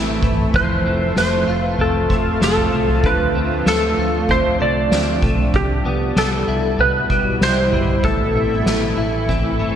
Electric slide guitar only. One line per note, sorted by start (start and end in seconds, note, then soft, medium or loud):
0.56 1.17 C5 medium
1.18 1.63 C5 medium
1.63 1.82 B4 medium
1.81 2.43 A4 medium
2.44 3.07 A4 medium
3.06 3.69 B4 medium
3.68 4.32 A4 medium
4.31 4.61 C5 medium
4.62 5.20 D5 medium
5.56 6.19 G4 medium
6.18 6.82 A4 medium
6.81 7.43 B4 medium
7.43 8.07 C5 loud
8.05 9.76 A4 medium